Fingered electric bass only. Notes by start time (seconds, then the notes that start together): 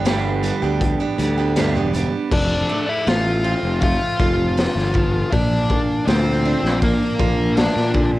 Already playing: G1
0.62 D2
1.18 D2
1.74 E1
2.32 F1
3.07 A1
3.63 F1
4.19 F1
4.75 G1
5.33 A#1
6.07 D2
6.63 A#1
7.20 A#1
7.76 A#2